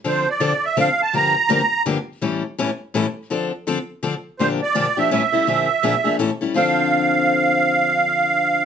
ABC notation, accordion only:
X:1
M:3/4
L:1/8
Q:"Swing" 1/4=166
K:Dm
V:1 name="Accordion"
c d2 e f a | b4 z2 | z6 | z6 |
c d2 e e2- | e4 z2 | f6- | f6 |]